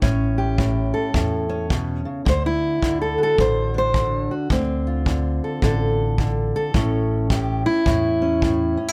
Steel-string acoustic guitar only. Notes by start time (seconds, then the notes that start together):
Already playing: A3
0.02 A2 C#4
0.38 G4
0.58 A2
0.94 A4
1.14 A2
1.49 C#4
1.70 B2
2.05 C#3
2.25 D3 C5
2.46 E4
2.83 D3
3.01 A4
3.18 F#4
3.23 A4
3.38 D3 C5
3.74 D4 C5
3.95 D3
4.31 F#4
4.51 D3 C4
4.87 F4
5.07 D3
5.44 A4
5.63 D3 A4
6.19 D3
6.56 A4
6.75 A2 C#4
7.31 A2 G4
7.66 E4
7.86 A2
8.22 C#4
8.44 A2
8.77 C#4
8.88 E4